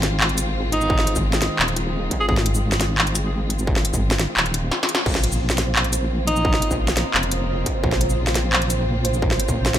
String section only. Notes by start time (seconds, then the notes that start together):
Already playing: D#3 G#3 C4 F4
5.06 C#3 A#3 C4 F4